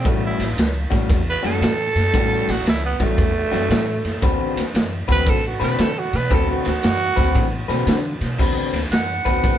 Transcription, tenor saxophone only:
0.08 0.24 A3 medium
0.26 0.53 E4 medium
1.30 1.45 B4 medium
1.46 2.52 A4 loud
2.51 2.67 F#4 loud
2.69 2.85 E4 loud
2.86 3.05 B3 loud
3.04 4.55 A3 loud
5.12 5.31 B4 loud
5.30 5.45 A4 loud
5.47 5.62 F#4 medium
5.64 5.83 B4 medium
5.81 6.00 A4 medium
5.99 6.18 F#4 loud
6.16 6.36 B4 medium
6.34 6.50 A4 medium
6.51 6.67 F#4 medium
6.69 7.68 F#4 loud

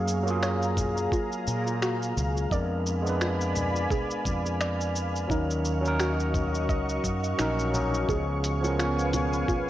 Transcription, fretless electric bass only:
0.00 1.07 F#2 medium
1.47 2.12 A#2 medium
2.17 2.45 C#2 medium
2.51 3.86 F2 loud
4.25 5.25 F2 medium
5.30 6.69 D#2 medium
6.69 6.98 C#2 medium
7.04 7.33 F#2 medium
7.40 8.04 A#1 medium
8.08 9.43 C#2 medium

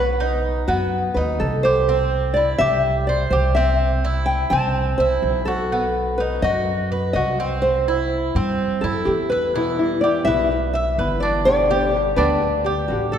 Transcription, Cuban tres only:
0.00 0.19 B3 medium
0.20 0.67 D#4 medium
0.68 1.15 B3 medium
1.17 1.63 D#4 medium
1.65 1.88 G4 medium
1.89 2.35 C4 medium
2.37 2.60 E4 medium
2.61 3.07 G4 medium
3.09 3.32 C5 medium
3.33 3.56 G4 medium
3.56 4.03 C4 medium
4.05 4.51 E4 medium
4.53 4.99 C4 medium
5.00 5.47 E4 medium
5.48 5.71 F#4 medium
5.72 6.19 B3 medium
6.20 6.43 D#4 medium
6.44 6.91 F#4 medium
6.92 7.15 B4 medium
7.16 7.39 F#4 medium
7.40 7.86 C4 medium
7.88 8.34 E4 medium
8.36 8.82 C4 medium
8.84 9.30 E4 medium
9.32 9.55 B4 medium
9.56 10.02 E4 medium
10.04 10.27 G4 medium
10.27 10.74 B4 medium
10.75 10.98 E5 medium
10.99 11.22 B4 medium
11.23 11.69 D4 medium
11.71 12.17 G4 medium
12.18 12.64 D4 medium
12.66 13.13 G4 medium
13.13 13.18 A4 medium

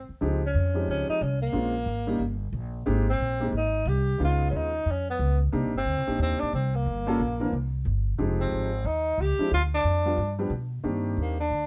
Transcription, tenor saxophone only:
0.00 0.10 C4 medium
0.46 0.87 C#4 medium
0.90 1.08 C#4 medium
1.10 1.24 D#4 medium
1.23 1.41 C#4 medium
1.42 2.37 A#3 medium
3.10 3.51 C4 loud
3.57 3.90 D#4 medium
3.88 4.21 G4 medium
4.24 4.48 F4 medium
4.50 4.58 C#4 medium
4.57 4.93 D#4 medium
4.91 5.09 C#4 medium
5.10 5.40 B3 medium
5.78 6.18 C4 loud
6.22 6.42 C4 loud
6.40 6.53 D4 medium
6.54 6.77 C4 medium
6.75 7.74 A#3 medium
8.41 8.88 C4 loud
8.86 9.22 D#4 medium
9.21 9.53 G4 loud
9.54 9.63 F4 medium
9.74 10.36 D4 medium
11.21 11.39 A#3 medium
11.40 11.67 D4 medium

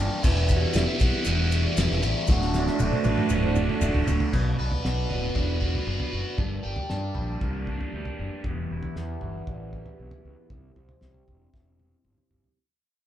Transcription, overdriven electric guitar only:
0.00 0.23 G3 medium
0.00 0.23 A#3 medium
0.00 0.22 D4 medium
0.00 0.22 G4 medium
0.23 1.00 E2 loud
0.23 1.00 B2 loud
0.23 0.72 E3 loud
0.23 0.74 G3 loud
0.23 0.75 B3 loud
0.23 0.75 E4 loud
0.73 1.01 E3 medium
0.73 1.00 G3 loud
0.73 0.99 B3 loud
0.73 0.98 E4 medium
0.99 1.25 E3 medium
0.99 1.26 G3 medium
0.99 1.27 B3 medium
0.99 1.27 E4 medium
1.24 2.02 E2 medium
1.24 2.02 B2 medium
1.24 1.75 E3 medium
1.24 1.76 G3 medium
1.24 1.77 B3 loud
1.24 1.79 E4 medium
1.76 2.04 E3 medium
1.76 2.03 G3 medium
1.76 2.02 B3 medium
1.76 2.01 E4 medium
2.02 2.28 E3 medium
2.02 2.27 G3 medium
2.02 2.27 B3 medium
2.02 2.26 E4 medium
2.28 3.05 D2 medium
2.28 2.77 A2 loud
2.28 2.79 D3 loud
2.28 2.80 A3 loud
2.28 2.81 F#4 loud
2.79 3.28 A2 medium
2.79 3.07 D3 medium
2.79 3.06 A3 medium
2.79 3.04 F#4 loud
3.05 3.30 D3 medium
3.05 3.30 A3 medium
3.05 3.31 F#4 medium
3.29 4.06 D2 medium
3.29 3.79 A2 medium
3.29 3.80 D3 medium
3.29 3.81 A3 medium
3.29 3.82 F#4 loud
3.80 4.30 A2 medium
3.80 4.08 D3 medium
3.80 4.06 A3 medium
3.80 4.05 F#4 medium
4.06 4.32 D3 medium
4.06 4.31 A3 medium
4.06 4.30 F#4 medium
4.33 5.61 B2 medium
4.59 5.84 B4 medium
4.84 5.59 F#4 medium
5.09 6.38 B3 medium
5.35 6.38 D4 medium
5.60 6.11 F#4 medium
5.85 6.37 B4 medium
6.12 6.38 F#4 medium
6.37 7.66 G2 medium
6.63 7.94 G4 medium
6.89 7.68 D4 medium
7.15 9.22 G3 medium
7.42 8.44 A#3 medium
7.69 8.19 D4 medium
7.95 8.72 G4 medium
8.20 8.45 D4 medium
8.46 9.74 E2 medium
8.72 10.00 E4 medium
8.97 9.73 B3 medium
9.23 11.28 E3 medium
9.48 11.53 G3 medium
9.75 10.24 B3 medium
10.00 10.77 E4 medium
10.25 10.50 B3 medium
10.51 11.79 C3 medium
10.78 12.03 C5 medium
11.02 11.76 G4 medium
11.28 12.56 C4 medium
11.53 12.56 E4 medium
11.78 12.29 G4 medium
12.04 12.56 C5 medium
12.31 12.56 G4 medium

